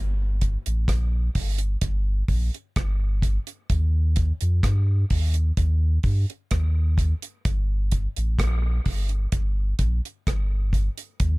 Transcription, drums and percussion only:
0.41 kick medium
0.41 closed hi-hat medium
0.66 closed hi-hat medium
0.88 kick loud
0.88 cross-stick medium
0.88 closed hi-hat medium
1.35 kick medium
1.35 open hi-hat medium
1.58 closed hi-hat medium
1.81 kick medium
1.81 closed hi-hat medium
2.28 kick medium
2.28 open hi-hat soft
2.54 closed hi-hat soft
2.76 kick loud
2.76 cross-stick loud
2.76 closed hi-hat medium
3.22 kick medium
3.22 closed hi-hat medium
3.47 closed hi-hat medium
3.70 kick loud
3.70 closed hi-hat medium
4.16 kick loud
4.16 closed hi-hat medium
4.41 closed hi-hat medium
4.63 kick loud
4.63 cross-stick loud
4.63 closed hi-hat medium
5.10 kick medium
5.10 open hi-hat medium
5.34 closed hi-hat soft
5.57 kick loud
5.57 closed hi-hat medium
6.03 kick medium
6.03 open hi-hat soft
6.30 closed hi-hat soft
6.51 kick loud
6.51 cross-stick loud
6.51 closed hi-hat medium
6.98 kick medium
6.98 closed hi-hat medium
7.22 closed hi-hat medium
7.45 kick loud
7.45 closed hi-hat medium
7.92 kick medium
7.92 closed hi-hat medium
8.16 closed hi-hat medium
8.39 kick loud
8.39 cross-stick loud
8.39 closed hi-hat medium
8.86 kick medium
8.86 open hi-hat medium
9.09 closed hi-hat medium
9.32 kick loud
9.32 closed hi-hat medium
9.79 kick medium
9.79 closed hi-hat medium
10.05 closed hi-hat soft
10.27 kick loud
10.27 cross-stick loud
10.27 closed hi-hat medium
10.73 kick medium
10.73 closed hi-hat medium
10.98 closed hi-hat medium
11.20 kick loud
11.20 closed hi-hat medium

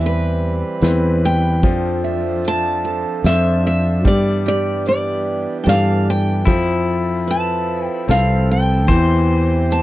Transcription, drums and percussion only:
0.01 closed hi-hat soft
0.81 snare medium
0.81 closed hi-hat medium
1.63 kick loud
1.63 closed hi-hat medium
2.45 closed hi-hat medium
3.25 snare medium
3.25 closed hi-hat medium
4.05 kick loud
4.05 closed hi-hat medium
4.86 closed hi-hat medium
5.66 snare medium
5.66 closed hi-hat soft
6.46 kick loud
6.46 closed hi-hat medium
7.28 closed hi-hat soft
8.08 snare medium
8.08 closed hi-hat medium
8.89 kick loud
8.89 closed hi-hat medium
9.71 closed hi-hat soft

